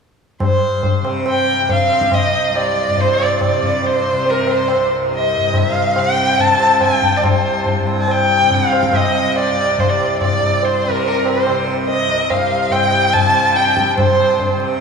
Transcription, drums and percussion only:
0.40 tabla na, tabla ge
0.83 tabla tin, tabla ge
1.05 tabla na
1.26 tabla na
1.69 tabla tin, tabla ge
1.90 tabla na
2.01 tabla ke
2.12 tabla na, tabla ge
2.55 tabla na
2.98 tabla tin, tabla ge
3.19 tabla na
3.41 tabla na, tabla ge
3.63 tabla ge
3.83 tabla tin
4.26 tabla tin
4.47 tabla na
4.68 tabla na
5.11 tabla tin
5.54 tabla na, tabla ge
5.96 tabla na
6.39 tabla tin, tabla ge
6.60 tabla na
6.81 tabla na, tabla ge
7.02 tabla ge
7.24 tabla na, tabla ge
7.66 tabla tin, tabla ge
7.87 tabla na
8.08 tabla na
8.51 tabla tin, tabla ge
8.73 tabla na
8.83 tabla ke
8.93 tabla na, tabla ge
9.36 tabla na
9.78 tabla tin, tabla ge
9.99 tabla na
10.21 tabla na, tabla ge
10.42 tabla ge
10.63 tabla tin
10.85 tabla na
11.05 tabla tin
11.25 tabla na
11.47 tabla na
11.68 tabla na
11.89 tabla tin
12.30 tabla na, tabla ge
12.72 tabla na
13.14 tabla tin, tabla ge
13.35 tabla na
13.56 tabla te
13.67 tabla te
13.77 tabla ke
13.87 tabla te
13.98 tabla na, tabla ge
14.39 tabla tin, tabla ge
14.60 tabla na

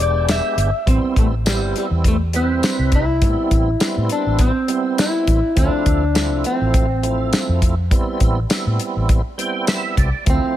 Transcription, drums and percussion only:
0.29 snare, closed hi-hat, tambourine
0.58 closed hi-hat
0.87 kick, closed hi-hat
1.16 kick, closed hi-hat
1.46 snare, closed hi-hat, tambourine
1.76 closed hi-hat
2.04 kick, closed hi-hat
2.33 closed hi-hat
2.63 snare, closed hi-hat, tambourine
2.92 kick, closed hi-hat
3.22 kick, closed hi-hat
3.51 kick, closed hi-hat
3.80 snare, closed hi-hat, tambourine
4.09 closed hi-hat
4.39 kick, closed hi-hat
4.68 closed hi-hat
4.98 snare, closed hi-hat, tambourine
5.27 kick, closed hi-hat
5.57 kick, closed hi-hat
5.86 kick, closed hi-hat
6.15 snare, closed hi-hat, tambourine
6.44 closed hi-hat
6.74 kick, closed hi-hat
7.03 closed hi-hat
7.33 snare, closed hi-hat, tambourine
7.62 kick, closed hi-hat
7.91 kick, closed hi-hat
8.20 kick, closed hi-hat
8.50 snare, closed hi-hat, tambourine
8.80 closed hi-hat
9.09 kick, closed hi-hat
9.39 closed hi-hat
9.67 snare, closed hi-hat, tambourine
9.97 kick, closed hi-hat
10.26 kick, closed hi-hat

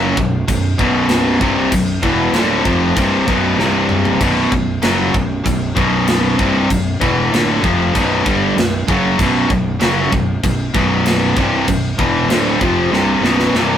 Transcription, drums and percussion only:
0.17 kick
0.48 kick, crash
0.79 kick
1.09 snare, crash
1.41 kick
1.72 kick, crash
2.03 kick
2.34 snare, crash
2.65 kick
2.97 kick, crash
3.28 kick
3.60 snare
3.89 mid tom
4.05 floor tom
4.21 kick, crash
4.52 kick
4.82 snare, crash
5.14 kick
5.46 kick, crash
5.77 kick
6.08 snare, crash
6.39 kick
6.70 kick, crash
7.01 kick
7.34 snare, crash
7.64 kick
7.95 kick, crash
8.26 kick
8.58 snare, crash
8.88 kick
9.19 kick, crash
9.50 kick
9.81 snare, crash
10.12 kick
10.44 kick, crash
10.74 kick
11.06 snare, crash
11.37 kick
11.68 kick, crash
11.99 kick
12.30 snare, crash
12.61 kick
12.94 snare
13.25 snare
13.40 snare
13.55 snare

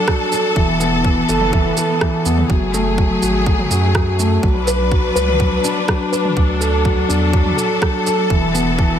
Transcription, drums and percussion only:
0.08 kick, cross-stick
0.32 shaker
0.56 kick
0.80 shaker
1.05 kick
1.29 shaker
1.41 mid tom
1.53 kick
1.77 shaker
2.01 kick, cross-stick
2.26 shaker
2.38 mid tom
2.50 kick
2.74 shaker
2.98 kick
3.22 shaker
3.46 kick
3.59 mid tom
3.71 shaker
3.95 kick, cross-stick
4.19 shaker
4.43 kick
4.68 shaker
4.92 kick
5.16 shaker
5.28 mid tom
5.40 kick
5.64 shaker
5.88 kick, cross-stick
6.13 shaker
6.25 mid tom
6.37 kick
6.61 shaker
6.85 kick
7.10 shaker
7.33 kick
7.46 mid tom
7.58 shaker
7.82 kick, cross-stick
8.07 shaker
8.30 kick
8.55 shaker
8.79 kick

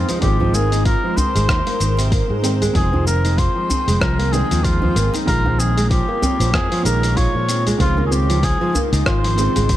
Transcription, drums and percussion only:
0.09 open hi-hat, djembe slap, shaker
0.22 kick, open hi-hat, shaker
0.40 djembe tone, djembe bass
0.54 shaker
0.72 open hi-hat, shaker
0.85 kick, open hi-hat, djembe tone, shaker
1.17 djembe slap, djembe bass, shaker
1.35 open hi-hat, djembe tone, shaker
1.49 kick, cross-stick, shaker
1.67 open hi-hat, djembe slap
1.80 open hi-hat, djembe slap, shaker
1.97 open hi-hat, djembe slap, shaker
2.12 kick, open hi-hat, shaker
2.44 open hi-hat, shaker
2.62 open hi-hat, djembe tone, shaker
2.75 kick, open hi-hat, shaker
2.93 djembe tone, djembe bass
3.07 shaker
3.25 open hi-hat, shaker
3.38 kick, open hi-hat, shaker
3.70 djembe slap, djembe bass, shaker
3.88 open hi-hat, djembe tone, shaker
4.01 kick, cross-stick, shaker
4.20 open hi-hat
4.33 open hi-hat, shaker
4.51 open hi-hat, djembe tone, shaker
4.64 kick, open hi-hat, shaker
4.82 djembe bass
4.96 open hi-hat, shaker
5.14 open hi-hat, djembe slap, shaker
5.28 kick, open hi-hat, shaker
5.46 djembe tone, djembe bass
5.60 shaker
5.78 open hi-hat, shaker
5.91 kick, open hi-hat, djembe tone, shaker
6.22 djembe slap, djembe bass, shaker
6.40 open hi-hat, djembe tone, shaker
6.54 kick, cross-stick, shaker
6.72 open hi-hat, djembe slap
6.85 open hi-hat, shaker
7.03 open hi-hat, djembe slap, shaker
7.17 kick, open hi-hat, shaker
7.49 open hi-hat, shaker
7.67 open hi-hat, djembe tone, shaker
7.80 kick, open hi-hat, shaker
7.97 djembe tone, djembe bass
8.12 shaker
8.30 open hi-hat, shaker
8.43 kick, open hi-hat, shaker
8.74 djembe slap, djembe bass, shaker
8.93 open hi-hat, djembe tone, shaker
9.06 kick, cross-stick, shaker
9.24 open hi-hat
9.38 open hi-hat, shaker
9.56 open hi-hat, djembe tone, shaker
9.69 kick, open hi-hat, shaker

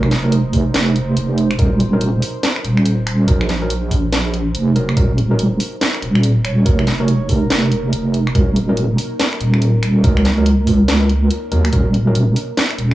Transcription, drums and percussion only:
0.03 finger snap
0.11 snare, closed hi-hat
0.32 closed hi-hat
0.53 kick, open hi-hat
0.74 snare, closed hi-hat
0.96 closed hi-hat
1.17 closed hi-hat
1.38 closed hi-hat
1.51 finger snap
1.59 kick, closed hi-hat
1.80 closed hi-hat
2.01 closed hi-hat
2.22 open hi-hat
2.43 snare, closed hi-hat
2.56 finger snap
2.65 closed hi-hat
2.77 finger snap
2.86 closed hi-hat
3.07 finger snap, closed hi-hat
3.28 kick, closed hi-hat
3.41 finger snap
3.49 snare, closed hi-hat
3.70 closed hi-hat
3.91 kick, open hi-hat
4.13 snare, closed hi-hat
4.34 closed hi-hat
4.55 closed hi-hat
4.76 closed hi-hat
4.89 finger snap
4.97 kick, closed hi-hat
5.18 closed hi-hat
5.39 closed hi-hat
5.60 open hi-hat
5.81 snare, closed hi-hat
5.95 finger snap
6.02 closed hi-hat
6.15 finger snap
6.23 closed hi-hat
6.45 finger snap, closed hi-hat
6.66 kick, closed hi-hat
6.79 finger snap
6.87 snare, closed hi-hat
7.08 closed hi-hat
7.29 kick, open hi-hat
7.50 snare, closed hi-hat
7.72 closed hi-hat
7.93 closed hi-hat
8.14 closed hi-hat
8.27 finger snap
8.35 kick, closed hi-hat
8.56 closed hi-hat
8.77 closed hi-hat
8.98 open hi-hat
9.20 snare, closed hi-hat
9.33 finger snap
9.41 closed hi-hat
9.54 finger snap
9.62 closed hi-hat
9.83 finger snap, closed hi-hat
10.04 kick, closed hi-hat
10.17 finger snap
10.25 snare, closed hi-hat
10.46 closed hi-hat
10.67 kick, open hi-hat
10.88 snare, closed hi-hat
11.09 closed hi-hat
11.31 closed hi-hat
11.52 closed hi-hat
11.65 finger snap
11.73 kick, closed hi-hat
11.94 closed hi-hat
12.15 closed hi-hat
12.36 open hi-hat
12.57 snare, closed hi-hat
12.71 finger snap
12.78 closed hi-hat

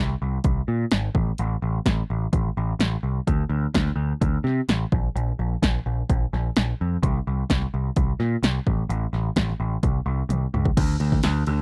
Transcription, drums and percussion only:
0.09 snare
0.44 kick, closed hi-hat
0.91 snare, closed hi-hat
1.15 kick
1.38 closed hi-hat
1.86 kick, snare, closed hi-hat
2.33 kick, closed hi-hat
2.80 snare, closed hi-hat
3.27 kick, closed hi-hat
3.74 kick, snare, closed hi-hat
3.87 snare
4.22 kick, closed hi-hat
4.47 snare
4.69 snare, closed hi-hat
4.92 kick
5.17 closed hi-hat
5.63 kick, snare, closed hi-hat
6.10 kick, closed hi-hat
6.34 snare
6.56 snare, closed hi-hat
7.03 kick, closed hi-hat
7.50 kick, snare, closed hi-hat
7.62 snare
7.96 kick, closed hi-hat
8.20 snare
8.43 snare, closed hi-hat
8.67 kick
8.90 closed hi-hat
9.14 snare
9.36 kick, snare, closed hi-hat
9.49 snare
9.83 kick, closed hi-hat
10.30 closed hi-hat, high tom
10.54 mid tom
10.65 kick
10.77 kick, crash, ride
11.00 ride
11.12 kick
11.23 snare, ride
11.47 ride

